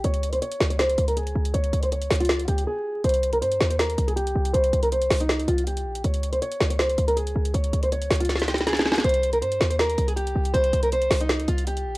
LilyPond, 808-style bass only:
\new Staff \with { instrumentName = "808-style bass" } { \clef bass \time 4/4 \key c \phrygian \tempo 4 = 160 des,4 r8 des,4 des,4 des,8 | des,8 des,4 des,4 des,8 r4 | c,4 g,8 ees,4 c,4 c,8 | c,8 c,4 c,8. des,16 c,4 bes,,8 |
des,4 r8 des,4 des,4 des,8 | des,8 des,4 des,2~ des,8 | c,4 g,8 ees,4 c,4 c,8 | c,8 c,4 c,8. des,16 c,4 bes,,8 | }